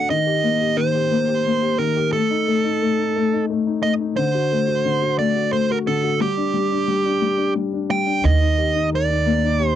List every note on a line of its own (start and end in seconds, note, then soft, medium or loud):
0.00 0.12 D3 soft
0.00 0.12 A3 soft
0.00 0.12 D4 soft
0.00 0.12 F#4 soft
0.00 0.12 A4 soft
0.10 0.75 D#3 soft
0.10 0.80 D#5 medium
0.27 0.59 G4 soft
0.43 1.10 A#3 soft
0.61 0.93 G4 soft
0.77 1.77 D#3 soft
0.77 1.82 C5 medium
0.94 1.26 G4 soft
1.11 1.44 A#3 soft
1.28 1.61 G4 soft
1.45 2.11 A#3 soft
1.62 1.95 G4 soft
1.78 2.12 D#3 soft
1.78 2.12 A#4 medium
1.96 2.13 G4 soft
2.13 2.46 A3 soft
2.13 3.45 A4 medium
2.30 2.63 D#4 soft
2.48 2.81 A3 soft
2.64 2.97 D#4 soft
2.82 3.14 A3 soft
2.99 3.32 D#4 soft
3.16 3.48 A3 medium
3.33 3.65 D#4 soft
3.50 3.82 A3 soft
3.67 3.99 D#4 soft
3.83 4.16 A3 soft
3.83 3.92 D#5 medium
4.00 4.17 D#4 soft
4.16 4.84 D3 soft
4.16 5.18 C5 medium
4.35 4.66 F#4 soft
4.52 5.17 A3 soft
4.68 5.01 F#4 soft
4.85 5.86 D3 soft
5.02 5.34 F#4 soft
5.19 5.51 A3 medium
5.19 5.52 D5 medium
5.36 5.69 F#4 soft
5.52 6.19 A3 soft
5.52 5.69 C5 medium
5.70 6.02 F#4 soft
5.70 5.77 A#4 medium
5.87 6.20 D3 soft
5.87 6.21 A4 medium
6.04 6.20 F#4 soft
6.21 6.52 G3 soft
6.21 7.53 G4 medium
6.37 6.70 D4 soft
6.54 6.86 G3 soft
6.71 7.04 D4 soft
6.88 7.20 G3 soft
7.05 7.36 D4 soft
7.22 7.54 G3 soft
7.38 7.72 D4 soft
7.55 7.88 G3 soft
7.73 8.05 D4 soft
7.90 8.23 G3 soft
7.90 8.26 G5 medium
8.06 8.23 D4 soft
8.24 9.75 D#2 medium
8.24 9.75 D#3 medium
8.24 8.89 D#5 medium
8.41 8.74 D#4 soft
8.58 9.58 G4 soft
8.75 9.08 D#4 soft
8.92 9.75 A#4 soft
8.92 9.67 D5 medium
9.09 9.42 D#4 soft
9.26 9.75 A#3 medium
9.43 9.75 D#4 soft
9.60 9.75 G4 soft
9.67 9.75 C5 medium